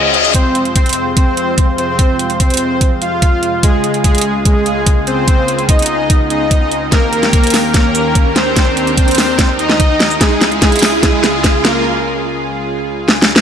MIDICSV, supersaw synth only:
0, 0, Header, 1, 2, 480
1, 0, Start_track
1, 0, Key_signature, -4, "minor"
1, 0, Tempo, 410959
1, 403, Time_signature, 4, 2, 24, 8
1, 15665, End_track
2, 0, Start_track
2, 0, Title_t, "Supersaw synth"
2, 0, Program_c, 0, 81
2, 0, Note_on_c, 0, 75, 91
2, 308, Note_off_c, 0, 75, 0
2, 403, Note_on_c, 0, 60, 76
2, 403, Note_on_c, 0, 72, 94
2, 742, Note_off_c, 0, 60, 0
2, 742, Note_off_c, 0, 72, 0
2, 884, Note_on_c, 0, 60, 77
2, 884, Note_on_c, 0, 72, 93
2, 1223, Note_off_c, 0, 60, 0
2, 1223, Note_off_c, 0, 72, 0
2, 1363, Note_on_c, 0, 60, 78
2, 1364, Note_on_c, 0, 72, 99
2, 1988, Note_off_c, 0, 60, 0
2, 1988, Note_off_c, 0, 72, 0
2, 2083, Note_on_c, 0, 60, 78
2, 2083, Note_on_c, 0, 72, 94
2, 2708, Note_off_c, 0, 60, 0
2, 2708, Note_off_c, 0, 72, 0
2, 2803, Note_on_c, 0, 60, 80
2, 2803, Note_on_c, 0, 72, 100
2, 3428, Note_off_c, 0, 60, 0
2, 3428, Note_off_c, 0, 72, 0
2, 3523, Note_on_c, 0, 65, 79
2, 3523, Note_on_c, 0, 77, 98
2, 4147, Note_off_c, 0, 77, 0
2, 4148, Note_off_c, 0, 65, 0
2, 4243, Note_on_c, 0, 56, 75
2, 4243, Note_on_c, 0, 68, 97
2, 4582, Note_off_c, 0, 56, 0
2, 4582, Note_off_c, 0, 68, 0
2, 4723, Note_on_c, 0, 56, 80
2, 4723, Note_on_c, 0, 68, 92
2, 5062, Note_off_c, 0, 56, 0
2, 5062, Note_off_c, 0, 68, 0
2, 5203, Note_on_c, 0, 56, 81
2, 5203, Note_on_c, 0, 68, 99
2, 5828, Note_off_c, 0, 56, 0
2, 5828, Note_off_c, 0, 68, 0
2, 5922, Note_on_c, 0, 60, 77
2, 5923, Note_on_c, 0, 72, 94
2, 6547, Note_off_c, 0, 60, 0
2, 6548, Note_off_c, 0, 72, 0
2, 6643, Note_on_c, 0, 63, 82
2, 6643, Note_on_c, 0, 75, 102
2, 7268, Note_off_c, 0, 63, 0
2, 7268, Note_off_c, 0, 75, 0
2, 7365, Note_on_c, 0, 63, 80
2, 7365, Note_on_c, 0, 75, 98
2, 7988, Note_off_c, 0, 63, 0
2, 7989, Note_off_c, 0, 75, 0
2, 8083, Note_on_c, 0, 58, 77
2, 8083, Note_on_c, 0, 70, 101
2, 8422, Note_off_c, 0, 58, 0
2, 8422, Note_off_c, 0, 70, 0
2, 8564, Note_on_c, 0, 58, 80
2, 8564, Note_on_c, 0, 70, 96
2, 8903, Note_off_c, 0, 58, 0
2, 8903, Note_off_c, 0, 70, 0
2, 9043, Note_on_c, 0, 70, 100
2, 9044, Note_on_c, 0, 58, 80
2, 9668, Note_off_c, 0, 58, 0
2, 9668, Note_off_c, 0, 70, 0
2, 9763, Note_on_c, 0, 60, 79
2, 9764, Note_on_c, 0, 72, 97
2, 10388, Note_off_c, 0, 60, 0
2, 10388, Note_off_c, 0, 72, 0
2, 10483, Note_on_c, 0, 60, 84
2, 10483, Note_on_c, 0, 72, 101
2, 11108, Note_off_c, 0, 60, 0
2, 11108, Note_off_c, 0, 72, 0
2, 11203, Note_on_c, 0, 63, 80
2, 11203, Note_on_c, 0, 75, 97
2, 11828, Note_off_c, 0, 63, 0
2, 11828, Note_off_c, 0, 75, 0
2, 11923, Note_on_c, 0, 56, 81
2, 11923, Note_on_c, 0, 68, 102
2, 12262, Note_off_c, 0, 56, 0
2, 12262, Note_off_c, 0, 68, 0
2, 12404, Note_on_c, 0, 56, 80
2, 12404, Note_on_c, 0, 68, 94
2, 12742, Note_off_c, 0, 68, 0
2, 12743, Note_off_c, 0, 56, 0
2, 12883, Note_on_c, 0, 56, 83
2, 12883, Note_on_c, 0, 68, 102
2, 13508, Note_off_c, 0, 56, 0
2, 13508, Note_off_c, 0, 68, 0
2, 13603, Note_on_c, 0, 70, 97
2, 13604, Note_on_c, 0, 58, 77
2, 13843, Note_off_c, 0, 70, 0
2, 13844, Note_off_c, 0, 58, 0
2, 15665, End_track
0, 0, End_of_file